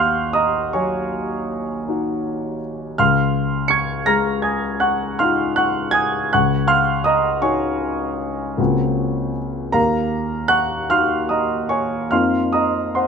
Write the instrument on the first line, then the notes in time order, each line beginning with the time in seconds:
grand piano
Already playing: D#2 F5 F#5 C6 C#6 F6 F#6
0.33 D#5 A#5 D#6
0.73 F#3 C#5 G#5 C#6
1.88 D#4 F#4
2.98 C#2 F5 C6 F6
3.68 C#6 G#6 C#7
4.06 G#3 A#5 F6 A#6
4.42 G#5 D#6 G#6
4.80 F#5 C#6 F#6
5.19 D#4 F4 F5 C6 F6
5.56 F#5 C#6 F#6
5.91 G#5 D#6 G#6
6.33 C#2 F#5 C#6 F#6
6.67 F5 C6 F6
7.04 D#5 A#5 D#6
7.42 D#4 F#4 C#5 G#5 C#6
8.57 C#2 A#3 C4 F4 F#4
9.72 D#2 A#4 F5 A#5
10.48 F#5 C#6 F#6
10.90 D#4 F#4 F5 C6 F6
11.29 D#5 A#5 D#6
11.69 C#5 G#5 C#6
12.11 F2 A#3 C4 D#4 F4 F5 C6 F6
12.52 D#5 A#5 D#6
12.95 C5 F#5 C6